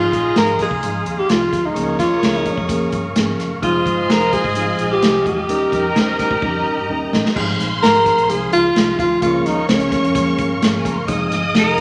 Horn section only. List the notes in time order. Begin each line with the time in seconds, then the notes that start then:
Already playing: D#4 F4 G#4
1.76 G#4 A#4 C#5
3.62 G#3 F4 C5
5.48 D#4 G4 A#4